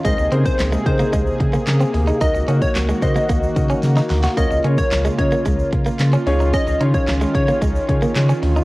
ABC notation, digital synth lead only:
X:1
M:4/4
L:1/16
Q:1/4=111
K:Db
V:1 name="Digital synth lead"
e2 z c z2 c4 z6 | e2 z d z2 e4 z6 | e2 z d z2 d4 z6 | e2 z d z2 d4 z6 |]